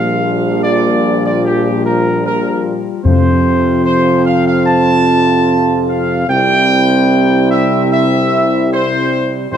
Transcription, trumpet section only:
Already playing: F5
0.63 D5
1.25 D5
1.45 G4
1.85 A#4
2.25 A#4
3.05 C5
3.85 C5
4.26 F5
4.47 F5
4.66 A5
5.89 F5
6.29 G5
7.51 E5
7.91 E5
8.72 C5
9.52 C5

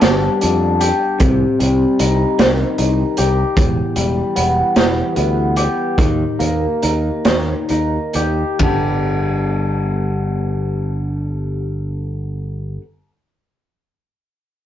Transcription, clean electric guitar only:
Already playing: G2 B3 D4
0.03 G3
0.41 D4
0.81 G4
1.20 C3
1.60 G3
2.00 D#4
2.39 D#3
2.78 D#4
3.18 G4
3.57 E2
3.96 G3
4.36 B3
4.76 E3
5.16 B3
5.57 G4
5.99 D#3
6.39 A#3
6.83 D#4
7.71 D#4
8.15 G4
8.59 G2 D3 G3 B3 D4 G4

